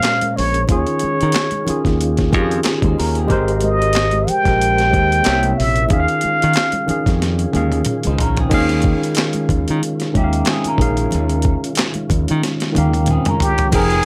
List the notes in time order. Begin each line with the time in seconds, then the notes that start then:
Already playing: A#2 G#3 A#3 C#4 G#4 A#4 C5 C#5 F5
0.03 snare, clap, closed hi-hat, muted conga
0.21 closed hi-hat, high conga
0.36 A#1 C#5, open hi-hat, muted conga
0.54 closed hi-hat
0.67 D#2 D#3 C#4 F4 C#5, kick, closed hi-hat, low conga
0.72 G#4
0.87 closed hi-hat
0.99 closed hi-hat, muted conga, high conga
1.04 muted fingered electric bass stroke
1.21 D#3, closed hi-hat
1.32 snare, clap, closed hi-hat, muted conga
1.51 closed hi-hat, high conga
1.65 D#3 C#4 F4, closed hi-hat, low conga
1.70 G#4, muted fingered electric bass stroke
1.85 D#2, kick, snare, closed hi-hat
2.01 closed hi-hat
2.17 kick, snare, closed hi-hat
2.30 F2 D#3 C#4 F4, kick, closed hi-hat, high conga
2.35 G4
2.42 G#4
2.51 closed hi-hat
2.63 snare, clap, closed hi-hat, muted conga
2.82 D#2 D#4 C5, kick, closed hi-hat, high conga
2.99 D#2 C#4 A#4, open hi-hat, muted conga
3.15 C4 G#4, closed hi-hat
3.27 G#1 G#3 G4 A#4 C5, kick, closed hi-hat, low conga
3.32 C5
3.48 closed hi-hat
3.61 D#5, closed hi-hat, muted conga, high conga
3.82 closed hi-hat
3.93 snare, clap, closed hi-hat, muted conga
4.11 closed hi-hat, high conga
4.27 G5, muted fingered electric bass stroke, closed hi-hat, low conga
4.44 A#1 G#3 G4 A#4, kick, snare, closed hi-hat
4.48 D#5
4.61 closed hi-hat
4.78 snare, closed hi-hat
4.90 G#3 G4 A#4, kick, closed hi-hat, high conga
4.95 D#2 C5
5.12 closed hi-hat
5.23 C3 A#3 C#4 E4 C#5, snare, clap, closed hi-hat
5.27 C2 E5
5.43 closed hi-hat, high conga
5.58 A#1 E5, open hi-hat
5.76 closed hi-hat
5.88 D#2 D#3 C#4 F4 G#4 F5, kick, closed hi-hat, muted conga, low conga
5.93 E5
6.00 F5
6.08 closed hi-hat
6.21 closed hi-hat, high conga
6.25 muted fingered electric bass stroke
6.42 D#3, closed hi-hat
6.53 snare, clap, closed hi-hat, muted conga
6.72 closed hi-hat, high conga
6.86 D#3 C#4 G#4, closed hi-hat, low conga
6.91 F5, muted fingered electric bass stroke
7.06 F2, kick, snare, closed hi-hat
7.22 snare, closed hi-hat
7.39 closed hi-hat
7.52 D#2 D#3 C#4 G#4, closed hi-hat, high tom, muted conga, high conga
7.56 F5
7.72 closed hi-hat, high tom
7.85 closed hi-hat, mid tom
8.03 C#2 D#4 C5, closed hi-hat, high conga
8.18 A#1 C#4 A#4, closed hi-hat, floor tom, muted conga
8.37 C4 G#4, closed hi-hat, floor tom
8.50 D#2 D#3 G#3 C#4 F4 G#4, kick, closed hi-hat, crash, low conga
8.54 F5
8.69 closed hi-hat
8.82 kick, closed hi-hat, muted conga
9.03 closed hi-hat
9.15 snare, clap, closed hi-hat, muted conga
9.33 closed hi-hat, high conga
9.49 D#2, kick, closed hi-hat, low conga
9.68 D#3, closed hi-hat
9.83 closed hi-hat, muted conga
10.00 snare, closed hi-hat
10.12 D#2 D#3 G#3 C#4, kick, closed hi-hat, high conga
10.17 A#3 G4 E5
10.24 F5
10.33 closed hi-hat
10.45 snare, clap, closed hi-hat, muted conga
10.50 C4 G#4
10.64 A#4, closed hi-hat, high conga
10.69 C#4
10.77 A#1 D#3 C#4 G#4, kick, closed hi-hat
10.82 F5
10.97 closed hi-hat
11.11 D#2, closed hi-hat, muted conga, low conga
11.29 closed hi-hat
11.42 kick, closed hi-hat, muted conga
11.64 closed hi-hat
11.75 snare, clap, closed hi-hat
11.94 closed hi-hat, high conga
12.09 D#2, kick, closed hi-hat, low conga
12.28 D#3, closed hi-hat
12.43 snare, closed hi-hat, muted conga
12.60 snare, closed hi-hat
12.73 D#3 G#3 C#4, closed hi-hat, high tom, muted conga, high conga
12.77 D#2 A#3 G4 F5
12.94 closed hi-hat, high tom
13.06 closed hi-hat, mid tom
13.10 C4 G#4
13.25 C#4 A#4, closed hi-hat, mid tom, high conga
13.40 G4, closed hi-hat, floor tom, muted conga
13.58 closed hi-hat, floor tom
13.71 F1 F3 D#4 G#4 G5, kick, closed hi-hat, crash, muted conga, low conga
13.76 A#4
13.90 closed hi-hat